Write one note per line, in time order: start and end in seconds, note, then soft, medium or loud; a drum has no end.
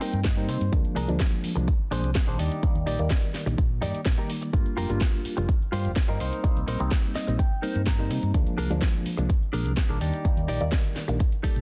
0.01 0.34 G3 medium
0.01 0.34 A#3 medium
0.01 0.19 C4 loud
0.01 0.34 C4 medium
0.01 0.19 D#4 loud
0.01 0.35 D#4 medium
0.01 0.20 A#4 loud
0.01 0.23 G5 medium
0.01 open hi-hat loud
0.13 0.48 G2 medium
0.13 closed hi-hat medium
0.24 0.47 D#5 medium
0.24 kick loud
0.24 snare loud
0.24 closed hi-hat medium
0.37 0.70 G3 medium
0.37 0.70 A#3 medium
0.37 0.49 C4 medium
0.37 0.70 C4 medium
0.37 0.70 D#4 loud
0.37 0.49 D#4 medium
0.37 0.49 A#4 medium
0.48 0.57 C3 medium
0.48 0.71 C5 medium
0.48 open hi-hat loud
0.61 0.69 G2 medium
0.61 muted clean electric guitar stroke soft
0.61 closed hi-hat medium
0.72 0.81 D2 loud
0.72 1.05 F3 loud
0.72 1.06 G#3 medium
0.72 1.06 A#3 medium
0.72 1.06 D4 loud
0.72 kick loud
0.72 closed hi-hat medium
0.85 closed hi-hat soft
0.96 1.05 C2 loud
0.96 1.08 D4 loud
0.96 1.09 G#4 loud
0.96 1.09 A#4 loud
0.96 open hi-hat loud
1.08 1.17 D2 medium
1.08 1.53 F3 medium
1.08 1.53 G#3 medium
1.08 1.53 A#3 medium
1.08 1.54 D4 loud
1.08 closed hi-hat medium
1.20 muted clean electric guitar stroke soft
1.20 kick loud
1.20 snare loud
1.20 closed hi-hat medium
1.44 muted fingered electric bass stroke soft
1.44 open hi-hat loud
1.55 1.64 C2 loud
1.55 1.70 F3 medium
1.55 1.70 G#3 medium
1.55 1.70 A#3 medium
1.55 1.70 D4 medium
1.55 muted clean electric guitar stroke medium
1.55 closed hi-hat medium
1.67 muted clean electric guitar stroke soft
1.67 kick loud
1.67 closed hi-hat medium
1.91 2.04 A#1 loud
1.91 2.25 F3 medium
1.91 2.25 G#3 medium
1.91 2.25 A#3 medium
1.91 2.09 D4 loud
1.91 2.25 D4 medium
1.91 2.10 G#4 loud
1.91 2.10 C5 loud
1.91 open hi-hat loud
2.04 2.12 C2 loud
2.04 closed hi-hat medium
2.15 kick loud
2.15 snare loud
2.15 closed hi-hat medium
2.27 2.36 A#1 loud
2.27 2.60 D#3 medium
2.27 2.60 G3 medium
2.27 2.61 A#3 medium
2.27 2.38 D4 medium
2.27 2.61 D4 loud
2.27 2.39 G#4 medium
2.27 2.39 C5 medium
2.39 2.48 D#2 medium
2.39 2.77 D#4 medium
2.39 2.78 G4 medium
2.39 2.78 D5 loud
2.39 open hi-hat loud
2.52 closed hi-hat medium
2.63 2.96 D#3 loud
2.63 2.96 G3 medium
2.63 2.96 A#3 medium
2.63 2.96 D5 loud
2.63 muted fingered electric bass stroke soft
2.63 kick loud
2.63 closed hi-hat medium
2.75 2.83 D#2 medium
2.75 closed hi-hat soft
2.86 2.95 A#1 loud
2.86 2.99 D#4 loud
2.86 2.99 G4 loud
2.86 3.00 D5 loud
2.86 open hi-hat loud
2.99 3.07 D#2 medium
2.99 3.44 D#3 medium
2.99 3.44 G3 medium
2.99 3.44 A#3 medium
2.99 3.44 D5 loud
2.99 closed hi-hat soft
3.10 muted clean electric guitar stroke soft
3.10 kick loud
3.10 snare loud
3.10 closed hi-hat medium
3.23 closed hi-hat soft
3.34 muted fingered electric bass stroke soft
3.34 snare soft
3.34 open hi-hat loud
3.46 3.55 A#1 loud
3.46 3.60 D#3 medium
3.46 3.60 G3 medium
3.46 3.61 A#3 medium
3.46 3.61 D4 medium
3.46 muted clean electric guitar stroke medium
3.46 closed hi-hat soft
3.58 3.83 A#1 medium
3.58 muted clean electric guitar stroke soft
3.58 kick loud
3.58 closed hi-hat medium
3.81 3.90 G2 medium
3.81 4.15 D#3 medium
3.81 4.15 G3 medium
3.81 4.15 A#3 medium
3.81 4.00 D#4 loud
3.81 4.00 G4 loud
3.81 4.15 D5 medium
3.81 4.00 D5 loud
3.81 open hi-hat loud
3.94 muted fingered electric bass stroke soft
3.94 closed hi-hat medium
4.06 4.15 A#1 medium
4.06 kick loud
4.06 snare loud
4.06 closed hi-hat medium
4.18 4.50 D#3 medium
4.18 4.51 G3 medium
4.18 4.51 A#3 medium
4.18 4.30 D#4 medium
4.18 4.30 G4 medium
4.18 4.30 A#4 medium
4.18 4.51 D5 loud
4.30 open hi-hat loud
4.42 muted clean electric guitar stroke soft
4.42 closed hi-hat soft
4.53 4.62 G1 loud
4.53 4.87 G3 loud
4.53 4.87 A#3 medium
4.53 4.87 D4 medium
4.53 4.87 F4 loud
4.53 kick loud
4.53 closed hi-hat medium
4.53 cabasa soft
4.66 closed hi-hat soft
4.66 cabasa soft
4.77 4.86 F1 loud
4.77 4.89 F4 loud
4.77 4.90 G4 loud
4.77 4.90 A#4 loud
4.77 open hi-hat loud
4.77 cabasa medium
4.89 4.98 G1 medium
4.89 5.34 G3 medium
4.89 5.34 A#3 medium
4.89 5.34 D4 medium
4.89 5.35 F4 loud
4.89 closed hi-hat soft
4.89 cabasa soft
5.01 muted clean electric guitar stroke soft
5.01 kick loud
5.01 snare loud
5.01 closed hi-hat medium
5.01 cabasa soft
5.14 cabasa soft
5.25 muted fingered electric bass stroke soft
5.25 open hi-hat loud
5.25 cabasa medium
5.37 5.45 F1 loud
5.37 5.51 G3 medium
5.37 5.51 A#3 medium
5.37 5.51 D4 medium
5.37 5.51 F4 medium
5.37 muted clean electric guitar stroke medium
5.37 closed hi-hat soft
5.37 cabasa soft
5.48 muted clean electric guitar stroke soft
5.48 kick loud
5.48 closed hi-hat medium
5.48 cabasa soft
5.62 cabasa soft
5.72 5.86 G2 loud
5.72 6.05 G3 medium
5.72 6.06 A#3 medium
5.72 6.06 D4 medium
5.72 5.90 F4 loud
5.72 6.06 F4 medium
5.72 5.91 G4 loud
5.72 5.91 C5 loud
5.72 open hi-hat loud
5.72 cabasa medium
5.85 5.93 F1 medium
5.85 closed hi-hat soft
5.85 cabasa soft
5.96 kick loud
5.96 snare loud
5.96 closed hi-hat medium
5.96 cabasa soft
6.08 6.17 G2 loud
6.08 6.41 G3 medium
6.08 6.41 A#3 medium
6.08 6.41 C4 medium
6.08 6.41 D#4 loud
6.08 6.20 F4 medium
6.08 6.20 G4 medium
6.08 6.19 A#4 medium
6.08 cabasa soft
6.20 6.29 C2 medium
6.20 6.59 D#4 medium
6.20 6.59 A#4 medium
6.20 6.59 C5 loud
6.20 open hi-hat loud
6.20 cabasa medium
6.33 closed hi-hat medium
6.33 cabasa soft
6.44 6.77 G3 loud
6.44 6.77 A#3 medium
6.44 6.77 C4 medium
6.44 6.77 D#4 loud
6.44 muted fingered electric bass stroke soft
6.44 kick loud
6.44 closed hi-hat medium
6.44 cabasa soft
6.56 6.64 C2 medium
6.56 closed hi-hat soft
6.56 cabasa soft
6.67 6.76 A#1 loud
6.67 6.80 D#4 loud
6.67 6.80 A#4 loud
6.67 6.81 C5 loud
6.67 open hi-hat loud
6.67 cabasa medium
6.80 6.88 C2 medium
6.80 7.25 G3 medium
6.80 7.25 A#3 medium
6.80 7.25 C4 medium
6.80 7.25 D#4 loud
6.80 closed hi-hat medium
6.80 cabasa soft
6.91 muted clean electric guitar stroke soft
6.91 kick loud
6.91 snare loud
6.91 closed hi-hat medium
6.91 cabasa soft
7.05 cabasa soft
7.15 7.38 D#5 medium
7.15 muted fingered electric bass stroke soft
7.15 snare soft
7.15 open hi-hat loud
7.15 cabasa medium
7.27 7.36 A#1 loud
7.27 7.41 G3 medium
7.27 7.41 A#3 medium
7.27 7.42 C4 medium
7.27 7.42 D#4 medium
7.27 muted clean electric guitar stroke medium
7.27 closed hi-hat medium
7.27 cabasa soft
7.38 7.83 G5 medium
7.38 muted clean electric guitar stroke soft
7.38 kick loud
7.38 closed hi-hat medium
7.38 cabasa soft
7.52 cabasa soft
7.62 7.96 G3 medium
7.62 7.96 A#3 medium
7.62 7.96 C4 medium
7.62 7.81 D#4 loud
7.62 7.97 D#4 medium
7.62 7.81 A#4 loud
7.62 7.81 C5 loud
7.62 open hi-hat loud
7.62 cabasa medium
7.75 8.11 G2 medium
7.75 closed hi-hat medium
7.75 cabasa soft
7.87 8.31 A#5 medium
7.87 kick loud
7.87 snare loud
7.87 closed hi-hat medium
7.87 cabasa soft
7.98 8.32 G3 medium
7.98 8.32 A#3 medium
7.98 8.32 C4 medium
7.98 8.10 D#4 medium
7.98 8.32 D#4 loud
7.98 8.10 A#4 medium
7.98 8.11 C5 medium
7.98 cabasa soft
8.11 8.19 C3 medium
8.11 open hi-hat loud
8.11 cabasa medium
8.22 8.31 G2 medium
8.22 muted clean electric guitar stroke soft
8.22 closed hi-hat medium
8.22 cabasa soft
8.34 8.43 D2 loud
8.34 8.68 F3 loud
8.34 8.68 G#3 medium
8.34 8.68 A#3 medium
8.34 8.68 D4 loud
8.34 kick loud
8.34 closed hi-hat medium
8.34 cabasa soft
8.47 closed hi-hat soft
8.47 cabasa soft
8.58 8.67 C2 loud
8.58 8.70 D4 loud
8.58 8.71 G#4 loud
8.58 8.71 A#4 loud
8.58 open hi-hat loud
8.58 cabasa medium
8.70 8.79 D2 medium
8.70 9.15 F3 loud
8.70 9.15 G#3 medium
8.70 9.15 A#3 medium
8.70 9.15 D4 loud
8.70 closed hi-hat medium
8.70 cabasa soft
8.82 kick loud
8.82 snare loud
8.82 closed hi-hat medium
8.82 cabasa soft
8.95 cabasa soft
9.06 muted fingered electric bass stroke soft
9.06 open hi-hat loud
9.06 cabasa medium
9.17 9.26 C2 loud
9.17 9.32 F3 medium
9.17 9.32 G#3 medium
9.17 9.32 A#3 medium
9.17 9.32 D4 medium
9.17 muted clean electric guitar stroke medium
9.17 closed hi-hat medium
9.17 cabasa soft
9.29 muted clean electric guitar stroke soft
9.29 kick loud
9.29 closed hi-hat medium
9.29 cabasa soft
9.43 cabasa soft
9.53 9.66 A#1 loud
9.53 9.87 F3 medium
9.53 9.87 G#3 medium
9.53 9.87 A#3 medium
9.53 9.71 D4 loud
9.53 9.87 D4 medium
9.53 9.72 G#4 loud
9.53 9.72 A#4 loud
9.53 open hi-hat loud
9.53 cabasa medium
9.66 9.74 C2 loud
9.66 closed hi-hat medium
9.66 cabasa soft
9.77 kick loud
9.77 snare loud
9.77 closed hi-hat medium
9.77 cabasa soft
9.89 9.97 A#1 loud
9.89 10.22 D#3 medium
9.89 10.22 G3 medium
9.89 10.22 A#3 medium
9.89 10.01 D4 medium
9.89 10.22 D4 loud
9.89 10.00 G#4 medium
9.89 10.01 A#4 medium
9.89 cabasa soft
10.00 10.10 D#2 medium
10.00 10.39 D#4 medium
10.00 10.40 G4 medium
10.00 10.40 D5 loud
10.00 open hi-hat loud
10.00 cabasa medium
10.13 closed hi-hat medium
10.13 cabasa soft
10.25 10.58 D#3 loud
10.25 10.58 G3 medium
10.25 10.58 A#3 medium
10.25 10.58 D5 loud
10.25 muted fingered electric bass stroke soft
10.25 kick loud
10.25 closed hi-hat medium
10.25 cabasa soft
10.37 10.45 D#2 medium
10.37 closed hi-hat soft
10.37 cabasa soft
10.48 10.57 A#1 loud
10.48 10.61 D#4 loud
10.48 10.61 G4 loud
10.48 10.61 D5 loud
10.48 open hi-hat loud
10.48 cabasa medium
10.60 10.69 D#2 medium
10.60 11.05 D#3 medium
10.60 11.06 G3 medium
10.60 11.06 A#3 medium
10.60 11.06 D5 loud
10.60 closed hi-hat medium
10.60 cabasa soft
10.72 muted clean electric guitar stroke soft
10.72 kick loud
10.72 snare loud
10.72 closed hi-hat medium
10.72 cabasa soft
10.85 closed hi-hat soft
10.85 cabasa soft
10.96 muted fingered electric bass stroke soft
10.96 snare soft
10.96 open hi-hat loud
10.96 cabasa medium
11.08 11.17 A#1 loud
11.08 11.22 D#3 medium
11.08 11.22 G3 medium
11.08 11.22 A#3 medium
11.08 11.23 D4 medium
11.08 muted clean electric guitar stroke medium
11.08 closed hi-hat medium
11.08 cabasa soft
11.19 muted clean electric guitar stroke soft
11.19 kick loud
11.19 closed hi-hat medium
11.19 cabasa soft
11.32 closed hi-hat soft
11.32 cabasa soft
11.43 11.61 D#3 medium
11.43 11.61 G3 medium
11.43 11.61 A#3 medium
11.43 11.61 D#4 loud
11.43 11.61 G4 loud
11.43 11.61 A4 loud
11.43 11.61 D5 medium
11.43 kick medium
11.43 open hi-hat loud
11.43 cabasa medium
11.56 11.61 A#1 medium
11.56 closed hi-hat medium
11.56 cabasa soft